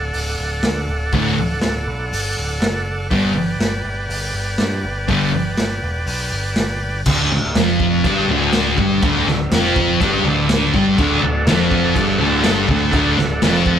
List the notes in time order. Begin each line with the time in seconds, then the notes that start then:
Already playing: D1 A4 D5 F#5
0.13 D1, open hi-hat
0.38 D1
0.63 D2, snare, open hi-hat
0.88 D1
1.12 D1 D2 A2 D3, kick, open hi-hat
1.38 D1
1.62 D1, snare, open hi-hat
1.87 B1
2.12 G1, open hi-hat
2.37 D1
2.61 F#1, snare, open hi-hat
3.09 G1 G2 D3 G3 B4 D5 G5, kick, open hi-hat
3.59 G1, snare, open hi-hat
3.84 G1
4.09 G1, open hi-hat
4.33 G1
4.58 G2, snare, open hi-hat
4.84 G1
5.08 G1 G2 D3 G3, kick, open hi-hat
5.33 G1
5.57 G1, snare, open hi-hat
5.82 E1
6.06 B1, open hi-hat
6.32 G1
6.56 G1, snare, open hi-hat
7.06 D1 D2 D3, kick, crash
7.30 D1 D2
7.55 F1 F2 F3, snare, crash
7.67 snare
7.80 kick
8.04 G1 G2 G3, kick, crash
8.28 D1 D2 D3
8.53 snare, crash
8.77 G1 G2 G3, kick
9.02 D1 D2 D3, kick, crash
9.25 D1, snare
9.30 D2
9.51 F1 F2 F3, snare, crash
9.65 snare
9.76 kick
10.01 G1 G2 G3, kick, crash
10.23 D1 D2 D3
10.49 snare, crash
10.74 G1 G2 G3, kick
10.97 D1 D2 D3 A4 D5 F#5, kick, crash
11.21 D1 D2
11.45 F1 F2 F3, snare, crash
11.71 kick
11.95 G1 G2 G3, kick, crash
12.19 D1 D2 D3
12.44 G1 G2 G3, snare, crash
12.68 D1 D2 D3, kick
12.93 D1 D2 D3, kick, crash
13.17 D1 D2, snare
13.41 F1 F2 F3, snare, crash
13.54 snare
13.66 kick